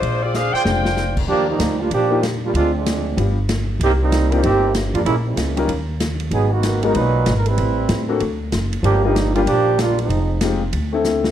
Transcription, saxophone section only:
0.00 0.22 G#3 medium
0.00 0.22 D4 medium
0.00 0.21 F4 medium
0.00 0.22 C5 medium
0.21 0.34 C4 medium
0.21 0.34 F4 medium
0.21 0.33 G#4 medium
0.21 0.34 D5 medium
0.34 0.54 D4 medium
0.34 0.54 G#4 medium
0.34 0.51 C5 medium
0.34 0.54 F5 loud
0.52 1.16 F4 medium
0.52 1.16 C5 medium
0.52 1.17 D5 medium
0.52 1.16 G5 loud

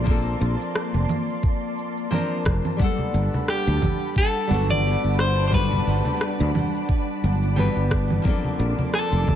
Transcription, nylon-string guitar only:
0.04 2.06 F3 medium
0.04 2.07 A#3 medium
0.04 2.08 C4 medium
0.09 2.09 D4 medium
0.09 2.10 A4 medium
2.11 2.76 F3 medium
2.11 2.76 A#3 medium
2.11 2.76 C4 medium
2.11 2.76 D4 medium
2.11 2.77 A#4 medium
2.77 4.45 G3 medium
2.77 4.46 B3 medium
2.77 4.47 D4 medium
2.82 4.48 A4 loud
2.82 4.47 F#5 medium
4.47 4.54 G3 medium
4.47 5.48 B3 medium
4.47 5.49 D4 medium
4.52 5.50 F#4 medium
4.52 5.49 A4 loud
5.49 7.52 G3 medium
5.49 7.53 B3 medium
5.49 7.54 D4 medium
5.55 7.54 F#4 medium
5.55 7.55 A4 medium
7.56 8.21 G3 medium
7.56 8.21 B3 medium
7.56 8.22 D4 medium
7.56 8.22 F#4 medium
7.56 8.23 B4 medium
8.22 9.36 F3 medium
8.22 9.36 A#3 medium
8.22 9.36 C4 medium
8.27 9.36 D4 medium
8.27 9.36 A4 loud

